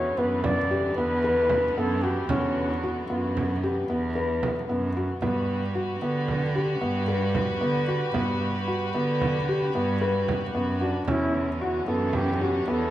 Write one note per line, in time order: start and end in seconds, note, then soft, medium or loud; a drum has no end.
0.00 5.19 D3 medium
0.00 5.19 E3 medium
0.00 5.18 B3 medium
0.00 0.11 F#4 medium
0.00 0.20 C#5 loud
0.17 0.89 F#2 medium
0.17 0.57 B3 medium
0.17 0.43 B4 medium
0.44 0.93 D5 loud
0.44 frame drum medium
0.70 0.90 G4 medium
0.70 frame drum soft
0.96 1.68 E2 medium
0.96 1.17 B3 medium
0.96 1.79 B4 medium
1.24 1.63 B4 medium
1.49 frame drum medium
1.76 2.24 F#2 medium
1.76 1.97 B3 medium
1.76 2.04 A4 medium
2.02 2.23 F#4 medium
2.02 2.29 G4 medium
2.29 3.01 E2 medium
2.29 2.69 C#4 medium
2.29 3.05 F#4 medium
2.29 frame drum medium
2.83 3.03 F#4 medium
3.09 3.81 F#2 medium
3.09 3.49 B3 medium
3.09 3.59 F#4 medium
3.09 frame drum soft
3.37 frame drum medium
3.63 3.83 G4 medium
3.63 frame drum soft
3.89 4.60 E2 medium
3.89 4.09 B3 medium
4.15 4.55 B4 medium
4.43 frame drum medium
4.68 5.16 F#2 medium
4.68 4.89 B3 medium
4.68 frame drum soft
4.96 5.16 F#4 medium
4.96 frame drum soft
5.22 5.93 G2 medium
5.22 5.62 B3 medium
5.22 11.03 F#4 medium
5.22 11.03 G4 medium
5.22 11.03 B4 medium
5.22 frame drum medium
5.75 5.95 F#4 medium
6.01 6.73 D3 medium
6.01 6.41 B3 medium
6.28 frame drum soft
6.55 6.75 G4 medium
6.81 7.53 G2 loud
6.81 7.01 B3 medium
7.08 7.48 B4 medium
7.35 frame drum medium
7.61 8.09 D3 medium
7.61 7.81 B3 medium
7.88 8.08 F#4 medium
8.14 8.86 G2 medium
8.14 8.54 B3 medium
8.14 frame drum medium
8.68 8.88 F#4 medium
8.94 9.66 D3 medium
8.94 9.34 B3 medium
9.21 frame drum medium
9.49 9.68 G4 medium
9.49 frame drum soft
9.74 10.46 G2 medium
9.74 9.95 B3 medium
10.01 10.41 B4 medium
10.28 frame drum medium
10.54 11.02 F#2 medium
10.54 10.74 B3 medium
10.81 11.10 D4 medium
10.81 11.01 F#4 medium
11.07 11.79 E2 medium
11.07 12.90 D3 medium
11.07 12.90 E3 medium
11.07 12.90 B3 medium
11.07 11.47 C#4 medium
11.07 12.90 C#4 medium
11.07 11.34 E4 medium
11.07 frame drum medium
11.35 11.47 E4 medium
11.60 11.90 F#4 medium
11.60 11.81 F#4 medium
11.87 12.59 F#2 medium
11.87 12.27 B3 medium
11.87 12.17 A4 medium
12.13 12.44 G4 medium
12.13 frame drum medium
12.40 12.71 F#4 medium
12.40 12.61 G4 medium
12.40 frame drum soft
12.67 12.90 E2 medium
12.67 12.87 B3 medium
12.67 12.90 A4 medium